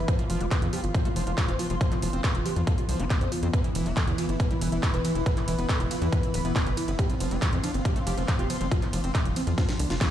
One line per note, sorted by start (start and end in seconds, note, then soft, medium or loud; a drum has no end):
0.00 10.11 E3 medium
0.00 10.11 B3 medium
0.08 0.15 C5 loud
0.08 3.54 F5 medium
0.08 kick loud
0.08 closed hi-hat medium
0.19 0.24 F3 medium
0.19 0.26 F4 medium
0.19 closed hi-hat medium
0.30 0.37 F1 loud
0.30 0.42 F3 loud
0.30 0.37 F4 medium
0.30 open hi-hat loud
0.41 0.48 F1 medium
0.41 0.46 A3 loud
0.41 0.48 F4 medium
0.41 closed hi-hat medium
0.51 0.57 F3 medium
0.51 0.58 B4 medium
0.51 kick loud
0.51 clap loud
0.51 closed hi-hat medium
0.56 3.54 C6 loud
0.62 0.69 F2 medium
0.62 0.67 E3 medium
0.62 0.69 F4 medium
0.62 closed hi-hat medium
0.73 0.81 F3 loud
0.73 0.80 G4 medium
0.73 open hi-hat loud
0.84 0.91 G1 medium
0.84 0.91 F4 medium
0.84 closed hi-hat medium
0.94 1.00 F3 medium
0.94 1.02 C5 medium
0.94 kick loud
0.94 closed hi-hat medium
1.05 1.09 A3 loud
1.05 1.12 F4 medium
1.05 closed hi-hat medium
1.16 1.23 F1 medium
1.16 1.24 F3 loud
1.16 1.23 C5 medium
1.16 open hi-hat loud
1.27 1.34 F1 medium
1.27 1.32 F3 loud
1.27 1.34 F4 medium
1.27 closed hi-hat medium
1.38 1.43 F3 medium
1.38 1.45 F4 medium
1.38 kick loud
1.38 clap loud
1.38 closed hi-hat medium
1.48 1.56 F1 medium
1.48 1.54 F4 medium
1.48 1.56 C5 loud
1.48 closed hi-hat medium
1.59 1.67 F3 loud
1.59 1.66 F4 medium
1.59 open hi-hat loud
1.70 1.77 F1 medium
1.70 1.75 F3 loud
1.70 1.77 F4 medium
1.70 closed hi-hat medium
1.81 1.86 F3 medium
1.81 1.88 C5 loud
1.81 kick loud
1.81 closed hi-hat medium
1.92 1.95 F3 loud
1.92 1.99 F4 medium
1.92 clap soft
1.92 closed hi-hat soft
2.02 2.10 F1 loud
2.02 2.10 F3 loud
2.02 2.10 F4 medium
2.02 open hi-hat loud
2.13 2.21 F1 medium
2.13 2.21 C4 medium
2.13 2.20 F4 medium
2.13 closed hi-hat medium
2.24 2.29 G3 medium
2.24 2.31 B4 medium
2.24 kick loud
2.24 clap loud
2.24 closed hi-hat medium
2.35 2.42 F1 medium
2.35 2.42 F4 medium
2.35 closed hi-hat medium
2.46 2.51 F3 medium
2.46 2.53 G4 medium
2.46 open hi-hat loud
2.56 2.64 F2 medium
2.56 2.62 F3 loud
2.56 2.64 F4 medium
2.56 closed hi-hat medium
2.67 2.73 F3 medium
2.67 2.74 A4 medium
2.67 kick loud
2.67 closed hi-hat medium
2.78 2.85 F4 medium
2.78 closed hi-hat medium
2.89 2.96 C2 medium
2.89 3.01 F3 medium
2.89 2.96 C5 medium
2.89 open hi-hat loud
3.00 3.07 F1 medium
3.00 3.07 F4 medium
3.00 3.05 G4 medium
3.00 closed hi-hat medium
3.10 3.17 F4 medium
3.10 kick loud
3.10 clap loud
3.10 closed hi-hat medium
3.21 3.28 F2 medium
3.21 3.24 E3 medium
3.21 3.28 C5 loud
3.21 closed hi-hat medium
3.32 3.39 F4 medium
3.32 open hi-hat loud
3.43 3.50 F2 medium
3.43 3.48 C4 medium
3.43 3.50 F4 medium
3.43 closed hi-hat medium
3.53 6.99 E4 medium
3.53 3.61 B4 loud
3.53 kick loud
3.53 closed hi-hat medium
3.64 3.70 E3 medium
3.64 3.71 E4 medium
3.64 closed hi-hat medium
3.75 3.82 E1 loud
3.75 3.87 E3 loud
3.75 3.82 E4 medium
3.75 open hi-hat loud
3.75 ride medium
3.86 3.93 E1 medium
3.86 3.91 G3 loud
3.86 3.93 E4 medium
3.86 6.99 B4 medium
3.86 6.99 B5 medium
3.86 closed hi-hat medium
3.97 4.02 E3 medium
3.97 4.04 A4 medium
3.97 kick loud
3.97 clap loud
3.97 closed hi-hat medium
4.07 4.15 E2 medium
4.07 4.13 D3 medium
4.07 4.15 E4 medium
4.07 closed hi-hat soft
4.18 4.26 E3 loud
4.18 4.25 F4 medium
4.18 open hi-hat medium
4.18 ride medium
4.29 4.36 G1 medium
4.29 4.36 E4 medium
4.29 closed hi-hat medium
4.40 4.45 E3 medium
4.40 4.47 B4 medium
4.40 kick loud
4.40 closed hi-hat medium
4.51 4.54 G3 loud
4.51 4.58 E4 medium
4.51 closed hi-hat medium
4.61 4.69 E1 loud
4.61 4.69 E3 loud
4.61 4.69 B4 medium
4.61 open hi-hat loud
4.61 ride medium
4.72 4.80 E1 medium
4.72 4.78 E3 loud
4.72 4.79 E4 medium
4.72 closed hi-hat medium
4.83 4.88 E3 medium
4.83 4.90 E4 medium
4.83 kick loud
4.83 clap loud
4.83 closed hi-hat medium
4.94 5.01 E1 medium
4.94 4.99 E4 medium
4.94 5.01 B4 loud
4.94 closed hi-hat medium
5.05 5.13 E3 loud
5.05 5.12 E4 medium
5.05 open hi-hat medium
5.05 ride medium
5.15 5.23 E1 medium
5.15 5.21 E3 loud
5.15 5.22 E4 medium
5.15 closed hi-hat medium
5.26 5.32 E3 medium
5.26 5.33 B4 loud
5.26 kick loud
5.26 closed hi-hat medium
5.37 5.40 E3 loud
5.37 5.44 E4 medium
5.37 clap soft
5.37 closed hi-hat medium
5.48 5.55 E1 loud
5.48 5.56 E3 loud
5.48 5.55 E4 medium
5.48 open hi-hat loud
5.48 ride medium
5.58 5.66 E1 medium
5.58 5.67 B3 medium
5.58 5.66 E4 medium
5.58 closed hi-hat medium
5.69 5.75 F3 medium
5.69 5.76 A4 medium
5.69 kick loud
5.69 clap loud
5.69 closed hi-hat medium
5.80 5.87 E1 medium
5.80 5.87 E4 medium
5.80 closed hi-hat medium
5.91 5.96 E3 medium
5.91 5.98 F4 medium
5.91 open hi-hat medium
5.91 ride medium
6.02 6.09 E2 medium
6.02 6.07 E3 loud
6.02 6.09 E4 medium
6.02 closed hi-hat medium
6.12 6.18 E3 medium
6.12 6.20 B4 medium
6.12 kick loud
6.12 closed hi-hat medium
6.23 6.30 E4 medium
6.23 closed hi-hat medium
6.34 6.41 D1 loud
6.34 6.41 B4 medium
6.34 open hi-hat loud
6.34 ride medium
6.45 6.52 E1 medium
6.45 6.53 B3 medium
6.45 6.52 E4 medium
6.45 closed hi-hat medium
6.56 6.63 E4 medium
6.56 kick loud
6.56 clap loud
6.56 closed hi-hat medium
6.66 6.74 G1 medium
6.66 6.72 E3 medium
6.66 6.74 B4 loud
6.66 closed hi-hat medium
6.77 6.84 E4 medium
6.77 open hi-hat medium
6.77 ride medium
6.88 6.95 G1 medium
6.88 6.91 B3 medium
6.88 6.95 E4 medium
6.88 closed hi-hat medium
6.99 7.06 G4 loud
6.99 10.11 F5 medium
6.99 kick loud
6.99 closed hi-hat medium
7.10 7.15 F3 medium
7.10 7.17 C4 medium
7.10 closed hi-hat medium
7.20 7.28 F1 loud
7.20 7.33 F3 loud
7.20 7.28 C4 medium
7.20 open hi-hat loud
7.20 ride medium
7.29 7.39 F1 medium
7.29 7.37 A3 loud
7.29 7.38 C4 medium
7.29 10.11 C6 medium
7.29 closed hi-hat medium
7.42 7.47 F3 medium
7.42 7.49 F4 medium
7.42 kick loud
7.42 clap loud
7.42 closed hi-hat medium
7.53 7.60 F2 medium
7.53 7.58 E3 medium
7.53 7.60 C4 medium
7.53 closed hi-hat medium
7.64 7.72 F3 loud
7.64 7.71 D4 medium
7.64 open hi-hat medium
7.64 ride medium
7.74 7.82 G1 medium
7.74 7.81 C4 medium
7.74 closed hi-hat medium
7.85 7.91 F3 medium
7.85 7.92 G4 medium
7.85 kick loud
7.85 closed hi-hat medium
7.96 7.99 A3 loud
7.96 8.03 C4 medium
7.96 closed hi-hat medium
8.07 8.14 F1 medium
8.07 8.15 F3 loud
8.07 8.14 G4 medium
8.07 open hi-hat loud
8.07 ride medium
8.18 8.25 F1 medium
8.18 8.23 F3 loud
8.18 8.25 C4 medium
8.18 closed hi-hat medium
8.28 8.34 F3 medium
8.28 8.35 C4 medium
8.28 kick loud
8.28 clap loud
8.28 closed hi-hat medium
8.39 8.46 F1 medium
8.39 8.44 F4 medium
8.39 8.46 G4 loud
8.39 closed hi-hat medium
8.50 8.58 F3 loud
8.50 8.57 C4 medium
8.50 open hi-hat medium
8.50 ride medium
8.61 8.68 F1 medium
8.61 8.66 F3 loud
8.61 8.68 C4 medium
8.61 closed hi-hat medium
8.71 8.77 F3 medium
8.71 8.79 F4 loud
8.71 kick loud
8.71 closed hi-hat medium
8.82 8.85 F3 loud
8.82 8.89 F3 medium
8.82 clap soft
8.82 closed hi-hat medium
8.93 9.00 F1 loud
8.93 9.00 F3 medium
8.93 9.01 F3 loud
8.93 open hi-hat loud
8.93 ride medium
9.04 9.11 F1 medium
9.04 9.11 F3 medium
9.04 9.12 C4 medium
9.04 closed hi-hat medium
9.15 9.20 G3 medium
9.15 9.22 E4 medium
9.15 kick loud
9.15 clap loud
9.15 closed hi-hat medium
9.25 9.33 F1 medium
9.25 9.33 F3 medium
9.25 closed hi-hat medium
9.36 9.42 F3 medium
9.36 9.43 C4 medium
9.36 open hi-hat medium
9.36 ride medium
9.47 9.54 F2 medium
9.47 9.52 F3 loud
9.47 9.54 F3 medium
9.47 closed hi-hat medium
9.58 9.63 F3 medium
9.58 9.65 F4 medium
9.58 kick loud
9.58 snare medium
9.58 closed hi-hat medium
9.69 9.76 F3 medium
9.69 snare medium
9.69 closed hi-hat medium
9.79 9.87 C2 loud
9.79 9.87 D4 medium
9.79 open hi-hat loud
9.79 ride medium
9.90 9.98 F1 medium
9.90 9.97 F3 medium
9.90 9.96 F4 loud
9.90 snare medium
9.90 closed hi-hat medium
10.01 10.06 F3 medium
10.01 10.08 F3 medium
10.01 kick loud
10.01 snare medium
10.01 clap loud
10.01 closed hi-hat medium